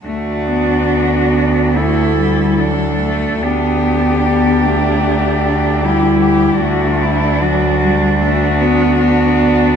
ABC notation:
X:1
M:4/4
L:1/8
Q:1/4=74
K:D
V:1 name="Cello"
F4 A2 A2 | G6 G G | F E F2 F4 |]
V:2 name="Cello"
D4 E2 D2 | D2 D4 E2 | D6 D2 |]
V:3 name="Cello"
A, B, B,2 A, G, F, A, | B,2 B, A,3 G,2 | A,2 F, G, A, B, B,2 |]
V:4 name="Cello" clef=bass
D,,8 | D,,8 | D,,8 |]